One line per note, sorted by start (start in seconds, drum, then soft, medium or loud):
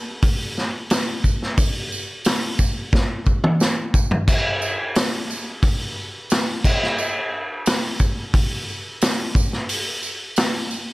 0.22 kick loud
0.22 open hi-hat medium
0.22 tambourine soft
0.57 snare soft
0.57 tambourine soft
0.90 snare loud
0.90 open hi-hat medium
0.90 tambourine medium
1.24 kick medium
1.24 tambourine medium
1.42 snare soft
1.57 kick loud
1.57 open hi-hat medium
1.57 tambourine medium
1.92 tambourine medium
2.25 snare loud
2.25 open hi-hat medium
2.25 tambourine medium
2.59 kick medium
2.59 tambourine medium
2.93 kick loud
2.93 snare medium
2.93 tambourine soft
3.26 kick medium
3.26 tambourine soft
3.44 mid tom medium
3.60 snare medium
3.60 tambourine medium
3.94 kick loud
3.94 tambourine medium
4.11 floor tom medium
4.28 kick loud
4.28 tambourine medium
4.28 crash loud
4.62 tambourine medium
4.95 snare loud
4.95 open hi-hat medium
4.95 tambourine medium
5.31 tambourine medium
5.63 kick loud
5.63 open hi-hat medium
5.63 tambourine soft
6.30 snare loud
6.30 open hi-hat medium
6.30 tambourine medium
6.64 kick loud
6.64 tambourine medium
6.64 crash loud
6.83 snare soft
6.98 tambourine medium
7.66 snare loud
7.66 open hi-hat medium
7.66 tambourine medium
7.99 kick medium
7.99 tambourine medium
8.34 kick loud
8.34 open hi-hat medium
8.34 tambourine soft
8.69 tambourine soft
9.01 snare loud
9.01 open hi-hat medium
9.01 tambourine medium
9.35 kick loud
9.35 tambourine medium
9.53 snare soft
9.69 open hi-hat medium
9.69 tambourine medium
10.03 tambourine medium
10.36 snare loud
10.36 open hi-hat medium
10.36 tambourine loud
10.71 tambourine medium